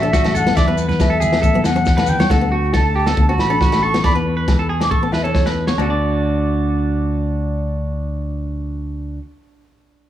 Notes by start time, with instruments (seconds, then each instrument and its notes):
Already playing: fingered electric bass A1, flute E5
0.02 nylon-string guitar D4, clean electric guitar A4, maracas
0.13 clean electric guitar F#4, kick, snare, maracas
0.24 nylon-string guitar A3, snare, high conga, low agogo
0.34 clean electric guitar A4, flute F#5, low conga, maracas
0.47 nylon-string guitar B3, snare, high conga
0.56 fingered electric bass E2, nylon-string guitar G#3, clean electric guitar D5, flute E5, kick, snare, low agogo, maracas
0.68 nylon-string guitar B3, clean electric guitar B4
0.78 maracas
0.89 clean electric guitar B4, snare, high conga, low conga, maracas
1.00 nylon-string guitar G#3, flute E5, kick, snare, low agogo, maracas
1.10 clean electric guitar A4
1.20 clean electric guitar G#4, high conga, low conga, maracas
1.32 nylon-string guitar B3, snare, low agogo
1.42 fingered electric bass A1, nylon-string guitar A3, clean electric guitar A4, kick, maracas
1.54 nylon-string guitar B3, high conga
1.64 fingered electric bass E2, flute F#5, muted clean electric guitar stroke, snare, low agogo, maracas
1.76 nylon-string guitar C#4, muted clean electric guitar stroke, maracas
1.86 kick, snare, maracas
1.97 nylon-string guitar A3, clean electric guitar B4, snare, high conga, low agogo
2.07 flute G5, low conga, maracas
2.19 nylon-string guitar B3, clean electric guitar C#5, snare, high conga, maracas
2.30 fingered electric bass D2, clean electric guitar A4, flute F#5, muted nylon-string guitar stroke, kick, snare, low agogo
2.41 nylon-string guitar B3
2.52 clean electric guitar F#4
2.73 nylon-string guitar A3, clean electric guitar A4, flute A5, kick, snare, low agogo
2.96 clean electric guitar G4
3.07 nylon-string guitar B3, clean electric guitar A4, snare, low agogo
3.17 fingered electric bass D2, nylon-string guitar A3, kick
3.29 nylon-string guitar C#4, clean electric guitar F#4
3.38 fingered electric bass A1, flute B5, snare, low agogo
3.50 nylon-string guitar D4, clean electric guitar A4
3.61 clean electric guitar F#4, kick, snare
3.72 nylon-string guitar A3, snare, low agogo
3.83 clean electric guitar A4, flute C#6
3.94 nylon-string guitar B3, snare
4.04 fingered electric bass E2, nylon-string guitar G#3, clean electric guitar D5, flute B5, kick, snare, low agogo
4.15 nylon-string guitar B3, clean electric guitar B4
4.37 clean electric guitar B4
4.48 nylon-string guitar G#3, kick, snare, low agogo
4.59 clean electric guitar A4
4.69 clean electric guitar G#4
4.80 flute D6, muted nylon-string guitar stroke, snare, low agogo
4.90 fingered electric bass A1, nylon-string guitar A3, clean electric guitar A4, flute C#6, kick
5.03 nylon-string guitar B3, flute A5
5.12 fingered electric bass E2, clean electric guitar B4, flute E5, snare, low agogo
5.23 nylon-string guitar C#4, clean electric guitar A4, flute C#5
5.33 flute C#5, kick, snare
5.46 nylon-string guitar A3, clean electric guitar B4, snare, low agogo
5.67 nylon-string guitar B3, clean electric guitar C#5, snare
5.78 fingered electric bass D2, clean electric guitar D4 F#4, nylon-string guitar D4, low agogo
5.86 clean electric guitar A4
5.90 clean electric guitar D5